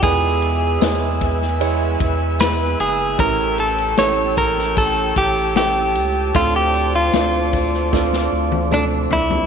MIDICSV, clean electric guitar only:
0, 0, Header, 1, 2, 480
1, 0, Start_track
1, 0, Tempo, 789474
1, 19, Time_signature, 4, 2, 24, 8
1, 5755, End_track
2, 0, Start_track
2, 0, Title_t, "Clean electric guitar"
2, 0, Program_c, 0, 27
2, 21, Note_on_c, 0, 68, 106
2, 1461, Note_off_c, 0, 68, 0
2, 1463, Note_on_c, 0, 71, 110
2, 1703, Note_off_c, 0, 71, 0
2, 1705, Note_on_c, 0, 68, 98
2, 1943, Note_off_c, 0, 68, 0
2, 1945, Note_on_c, 0, 70, 120
2, 2186, Note_off_c, 0, 70, 0
2, 2188, Note_on_c, 0, 69, 91
2, 2421, Note_off_c, 0, 69, 0
2, 2423, Note_on_c, 0, 73, 104
2, 2659, Note_off_c, 0, 73, 0
2, 2662, Note_on_c, 0, 70, 103
2, 2904, Note_off_c, 0, 70, 0
2, 2906, Note_on_c, 0, 69, 103
2, 3127, Note_off_c, 0, 69, 0
2, 3147, Note_on_c, 0, 67, 96
2, 3367, Note_off_c, 0, 67, 0
2, 3386, Note_on_c, 0, 67, 98
2, 3863, Note_off_c, 0, 67, 0
2, 3866, Note_on_c, 0, 65, 99
2, 3986, Note_off_c, 0, 65, 0
2, 3989, Note_on_c, 0, 67, 84
2, 4227, Note_off_c, 0, 67, 0
2, 4229, Note_on_c, 0, 65, 80
2, 5312, Note_on_c, 0, 62, 77
2, 5375, Note_off_c, 0, 62, 0
2, 5520, Note_off_c, 0, 65, 0
2, 5550, Note_on_c, 0, 64, 80
2, 5755, Note_off_c, 0, 64, 0
2, 5755, End_track
0, 0, End_of_file